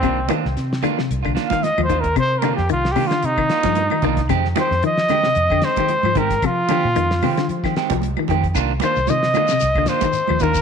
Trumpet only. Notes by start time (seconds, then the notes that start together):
Already playing: C4
1.47 F5
1.63 D#5
1.83 C5
2.00 A#4
2.19 C5
2.39 A#4
2.56 G4
2.72 F4
2.92 G4
3.07 F4
3.25 D#4
4.59 C5
4.86 D#5
5.65 C5
6.18 A#4
6.46 F4
8.84 C5
9.10 D#5
9.88 C5
10.42 A#4